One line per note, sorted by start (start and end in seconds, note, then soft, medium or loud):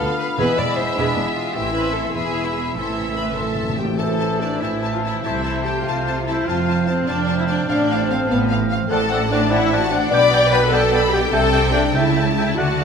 0.00 0.08 D2 soft
0.00 0.09 D2 medium
0.00 0.41 D3 medium
0.00 0.38 B3 medium
0.00 0.40 B3 medium
0.00 1.58 B3 medium
0.00 0.09 B3 medium
0.00 0.41 D4 medium
0.00 0.38 F4 medium
0.00 0.41 F4 medium
0.00 0.09 F4 medium
0.00 0.20 A4 medium
0.00 0.41 D5 medium
0.00 0.37 F5 medium
0.00 0.41 F5 medium
0.00 1.27 B5 medium
0.20 0.28 B4 medium
0.39 0.47 E1 medium
0.39 0.47 E2 medium
0.39 1.58 E3 medium
0.39 1.55 G#3 medium
0.39 1.56 G#3 medium
0.39 1.56 B3 medium
0.39 0.58 B3 medium
0.39 1.55 E4 medium
0.39 0.58 G#4 medium
0.39 0.59 B4 loud
0.39 1.38 E5 medium
0.39 1.55 E5 medium
0.58 0.67 E1 medium
0.58 0.66 E2 medium
0.58 0.67 B3 medium
0.58 1.94 E4 medium
0.58 0.79 D5 medium
0.77 0.87 E1 medium
0.77 0.86 E2 medium
0.77 0.86 B3 soft
0.77 0.86 E4 soft
0.77 0.97 C5 medium
0.97 1.06 E1 medium
0.97 1.05 E2 medium
0.97 1.16 B3 medium
0.97 1.26 D4 medium
0.97 1.16 G#4 medium
1.16 1.26 E1 medium
1.16 1.24 E2 soft
1.16 1.25 B3 medium
1.16 1.58 G#5 medium
1.27 1.37 E4 medium
1.36 1.56 F4 medium
1.36 1.58 B4 medium
1.55 2.12 A1 medium
1.55 2.11 A2 medium
1.55 2.17 A2 medium
1.55 2.11 E3 medium
1.55 1.97 C4 medium
1.55 2.12 C4 medium
1.55 1.97 E4 medium
1.55 2.11 E4 medium
1.55 2.12 E4 medium
1.55 1.75 G4 medium
1.55 2.11 E5 medium
1.55 2.12 C6 medium
1.74 1.94 B4 medium
1.95 2.55 E4 medium
1.95 2.15 A4 medium
1.95 2.17 A4 medium
2.14 2.77 E1 medium
2.14 2.76 E2 medium
2.14 2.78 E2 medium
2.14 2.59 E3 medium
2.14 2.75 B3 medium
2.14 2.77 B3 medium
2.14 2.74 E4 medium
2.14 2.75 E4 medium
2.14 2.76 E4 medium
2.14 2.45 G#4 medium
2.14 2.75 E5 medium
2.14 2.76 E5 medium
2.14 2.75 B5 medium
2.35 2.78 B3 soft
2.46 2.56 E4 medium
2.55 4.19 E4 soft
2.55 2.76 G#4 medium
2.55 2.79 B4 soft
2.75 3.79 A1 medium
2.75 3.79 A2 medium
2.75 3.98 A2 medium
2.75 2.83 A2 soft
2.75 3.77 E3 medium
2.75 3.17 C4 medium
2.75 3.18 C4 soft
2.75 3.16 E4 medium
2.75 3.77 E4 soft
2.75 3.17 E4 medium
2.75 3.16 A4 medium
2.75 3.78 E5 medium
2.75 3.79 C6 medium
2.92 2.99 A2 soft
2.98 3.07 A2 soft
2.98 4.08 C4 soft
3.09 3.15 A2 soft
3.17 3.24 A2 soft
3.17 3.78 A4 soft
3.17 3.26 B4 medium
3.17 3.37 B4 medium
3.17 3.25 B5 medium
3.25 3.31 A2 soft
3.32 3.39 A2 soft
3.38 3.46 A2 medium
3.38 3.78 A4 medium
3.38 3.79 A4 medium
3.38 3.78 A5 medium
3.47 3.54 A2 medium
3.55 3.62 A2 medium
3.55 4.50 E5 soft
3.63 3.68 A2 medium
3.69 3.76 A2 medium
3.77 3.83 A2 medium
3.77 3.86 G4 medium
3.77 3.99 G4 medium
3.77 4.29 A4 soft
3.77 3.99 G5 medium
3.84 3.92 A2 medium
3.98 4.55 A1 medium
3.98 4.55 A2 medium
3.98 5.26 A2 medium
3.98 4.58 E3 medium
3.98 4.41 A4 medium
3.98 4.40 A4 medium
3.98 4.58 C5 medium
3.98 4.58 E5 medium
3.98 4.06 A5 medium
3.98 4.41 A5 medium
3.98 4.59 A5 medium
4.20 4.92 E4 medium
4.20 4.28 A5 medium
4.30 4.82 A4 soft
4.40 4.62 D4 medium
4.40 4.62 D5 medium
4.40 4.50 A5 soft
4.61 5.18 A1 medium
4.61 5.17 A2 medium
4.61 5.25 E3 medium
4.61 4.94 E4 medium
4.61 5.24 C5 medium
4.61 4.93 E5 medium
4.61 5.28 E5 medium
4.61 5.75 A5 medium
4.61 4.70 A5 soft
4.61 5.23 A5 medium
4.83 5.44 A4 medium
4.83 4.92 A5 soft
4.92 5.04 F4 medium
4.92 4.97 F5 medium
5.03 5.34 C4 soft
5.03 5.23 E4 medium
5.03 5.24 E4 medium
5.03 5.22 E5 medium
5.03 5.13 A5 soft
5.14 5.26 E3 soft
5.23 5.80 C2 medium
5.23 5.79 C3 medium
5.23 6.49 C3 medium
5.23 6.47 A3 medium
5.23 5.65 E4 medium
5.23 5.66 E4 medium
5.23 6.45 C5 medium
5.23 6.47 C5 medium
5.23 5.65 E5 medium
5.23 5.32 A5 medium
5.23 6.45 A5 medium
5.35 5.54 C4 soft
5.45 6.06 A4 medium
5.45 5.53 A5 medium
5.55 6.17 C4 soft
5.65 5.86 G4 medium
5.65 5.87 G4 medium
5.65 5.86 C5 medium
5.65 5.86 G5 medium
5.65 5.74 A5 soft
5.85 6.41 C2 medium
5.85 6.40 C3 medium
5.85 6.27 F4 medium
5.85 6.26 F4 medium
5.85 6.27 F5 medium
5.85 5.96 A5 medium
6.07 6.88 A4 soft
6.07 6.15 A5 soft
6.18 6.37 C4 soft
6.27 6.57 A3 soft
6.27 6.47 E4 medium
6.27 6.48 E4 medium
6.27 6.35 E5 medium
6.27 6.36 A5 soft
6.38 6.68 C4 soft
6.46 7.01 F1 medium
6.46 7.01 F2 medium
6.46 7.71 F2 medium
6.46 7.67 C4 medium
6.46 6.87 F4 medium
6.46 6.88 F4 medium
6.46 7.67 C5 medium
6.46 6.87 F5 medium
6.46 7.67 F5 medium
6.46 7.67 A5 medium
6.46 6.56 A5 medium
6.58 7.48 A3 soft
6.69 7.38 C4 medium
6.69 6.77 A5 medium
6.79 7.28 F4 soft
6.87 7.08 C4 medium
6.87 8.09 A4 medium
6.87 7.08 C5 medium
6.87 6.95 A5 medium
6.99 7.18 C5 medium
7.07 7.62 F1 medium
7.07 7.62 F2 medium
7.07 7.38 D4 medium
7.07 7.39 D4 medium
7.07 7.39 D5 medium
7.07 8.29 F5 medium
7.07 7.16 A5 medium
7.28 7.99 F4 medium
7.28 7.36 A5 medium
7.37 7.89 C4 soft
7.37 7.48 E4 medium
7.37 7.49 E4 medium
7.37 7.42 E5 medium
7.47 7.78 A3 medium
7.47 7.66 D4 medium
7.47 7.67 D4 medium
7.47 7.69 D5 medium
7.47 7.55 A5 medium
7.59 7.71 C3 soft
7.68 8.23 A1 medium
7.68 8.23 A2 medium
7.68 8.91 A2 medium
7.68 8.89 C4 medium
7.68 8.09 D4 medium
7.68 8.90 C5 medium
7.68 8.10 D5 medium
7.68 8.89 F5 medium
7.68 7.77 F5 medium
7.68 8.58 A5 medium
7.80 8.70 A3 soft
7.91 7.99 F5 medium
8.00 8.49 F4 medium
8.07 8.29 C4 medium
8.07 8.31 C4 medium
8.07 10.14 A4 medium
8.07 8.30 C5 medium
8.07 8.18 F5 medium
8.20 8.40 C5 medium
8.28 8.84 A1 medium
8.28 8.84 A2 medium
8.28 8.38 B3 medium
8.28 8.50 B3 medium
8.28 8.50 B4 medium
8.28 8.37 F5 medium
8.41 9.31 C5 medium
8.50 8.93 F4 medium
8.50 8.58 F5 medium
8.70 10.02 A3 medium
8.70 8.78 F5 medium
8.82 8.94 F3 medium
8.88 10.08 A1 medium
8.88 10.08 A2 medium
8.88 9.00 C4 medium
8.88 9.27 A4 loud
8.88 9.29 A4 loud
8.88 9.00 F#5 medium
8.88 9.28 A5 medium
8.88 8.96 A5 medium
8.88 9.10 A5 medium
8.92 10.15 A2 medium
8.92 9.01 D5 medium
9.02 9.92 C4 medium
9.09 9.20 C4 medium
9.09 9.82 D4 medium
9.09 9.22 D5 medium
9.09 9.31 F#5 medium
9.09 9.21 F#5 medium
9.09 9.15 A5 medium
9.22 9.72 F#4 medium
9.29 9.41 C4 medium
9.29 9.50 D4 medium
9.29 9.52 D4 loud
9.29 9.52 D5 medium
9.29 9.42 D5 medium
9.29 9.41 F#5 medium
9.29 9.37 A5 medium
9.29 9.52 A5 medium
9.42 9.62 D5 medium
9.51 9.60 C4 medium
9.51 9.82 E4 medium
9.51 9.82 E4 loud
9.51 9.62 D5 medium
9.51 9.83 E5 medium
9.51 9.61 F#5 medium
9.51 10.15 F#5 medium
9.51 9.73 F#5 medium
9.51 9.58 A5 medium
9.63 10.61 D5 medium
9.71 9.81 C4 medium
9.71 10.15 F#4 medium
9.71 9.81 D5 medium
9.71 9.82 F#5 medium
9.71 9.91 A5 medium
9.71 9.78 A5 medium
9.81 10.32 D4 medium
9.81 9.92 F#4 medium
9.81 9.92 F#5 medium
9.91 10.00 C4 medium
9.91 10.15 C4 medium
9.91 10.12 D4 medium
9.91 10.12 D4 loud
9.91 10.02 D5 medium
9.91 10.13 D5 medium
9.91 10.01 F#5 medium
9.91 10.13 F#5 medium
9.91 10.00 A5 medium
10.03 10.15 A3 medium
10.10 11.31 B1 medium
10.10 11.30 B2 medium
10.10 11.35 B2 medium
10.10 10.20 B3 medium
10.10 10.50 D5 loud
10.10 10.53 D5 loud
10.10 10.22 D5 medium
10.10 10.17 G5 medium
10.10 10.22 G5 medium
10.10 10.31 B5 medium
10.10 10.53 D6 loud
10.30 10.40 B3 medium
10.30 10.41 D5 medium
10.30 10.37 G5 medium
10.30 10.52 G5 medium
10.30 10.42 G5 medium
10.43 10.92 G4 medium
10.52 10.61 B3 medium
10.52 10.72 B4 loud
10.52 10.62 D5 medium
10.52 10.59 G5 medium
10.52 10.62 G5 medium
10.52 10.72 B5 medium
10.52 10.60 B5 loud
10.63 10.81 D5 medium
10.70 10.81 B3 medium
10.70 11.12 A4 medium
10.70 11.13 A4 loud
10.70 10.82 D5 medium
10.70 10.92 G5 medium
10.70 12.61 G5 medium
10.70 10.82 G5 medium
10.70 10.79 G5 medium
10.70 11.12 A5 loud
10.83 11.35 D5 medium
10.92 11.01 B3 medium
10.92 11.63 G4 medium
10.92 11.03 D5 medium
10.92 11.02 G5 medium
10.92 10.99 G5 medium
10.92 11.11 B5 medium
11.03 11.35 D4 medium
11.11 11.22 B3 medium
11.11 11.35 B3 medium
11.11 11.21 G4 medium
11.11 11.33 G4 loud
11.11 11.33 G5 medium
11.11 11.23 G5 medium
11.11 11.20 G5 medium
11.16 11.24 D5 medium
11.23 12.61 G3 medium
11.31 11.91 C2 medium
11.31 11.91 C3 medium
11.31 11.97 C3 medium
11.31 11.42 A3 medium
11.31 11.74 A4 loud
11.31 11.73 A4 loud
11.31 11.44 E5 medium
11.31 11.42 G5 medium
11.31 11.92 G5 medium
11.31 11.75 A5 loud
11.31 11.40 A5 medium
11.44 12.06 A3 medium
11.53 11.63 A3 medium
11.53 12.16 E4 medium
11.53 11.65 E5 medium
11.53 11.62 G5 medium
11.53 11.60 A5 medium
11.64 12.26 G4 medium
11.73 11.84 A3 medium
11.73 11.81 D4 loud
11.73 11.95 D4 medium
11.73 12.36 A4 medium
11.73 11.95 D5 medium
11.73 11.85 E5 medium
11.73 11.83 G5 medium
11.73 11.81 A5 medium
11.85 12.47 E5 medium
11.94 12.59 C#2 medium
11.94 12.58 C#3 medium
11.94 12.61 C#3 medium
11.94 12.05 A3 medium
11.94 12.36 E4 medium
11.94 12.35 E4 medium
11.94 12.36 E5 medium
11.94 12.05 E5 medium
11.94 12.04 G5 medium
11.94 12.57 A5 medium
11.94 12.03 A5 medium
12.07 12.84 A3 medium
12.15 12.26 A3 medium
12.15 12.61 E4 medium
12.15 12.25 E5 medium
12.15 12.26 G5 medium
12.15 12.25 A5 medium
12.27 12.61 G4 medium
12.36 12.47 A3 medium
12.36 12.46 E4 medium
12.36 12.58 E4 medium
12.36 12.79 A4 medium
12.36 12.46 E5 medium
12.36 12.59 E5 medium
12.36 12.48 G5 medium
12.36 12.45 A5 medium
12.48 12.61 E5 medium
12.56 12.84 D2 medium
12.56 12.84 D3 medium
12.56 12.66 D3 soft
12.56 12.84 D3 medium
12.56 12.68 A3 medium
12.56 12.84 F#4 medium
12.56 12.67 D5 medium
12.56 12.68 F#5 medium
12.56 12.84 F#5 medium
12.56 12.84 A5 medium
12.56 12.66 A5 medium
12.67 12.74 D3 soft
12.67 12.84 D4 soft
12.75 12.82 D3 soft
12.75 12.84 F#5 medium
12.80 12.84 A3 medium
12.80 12.84 A4 medium
12.80 12.84 D5 medium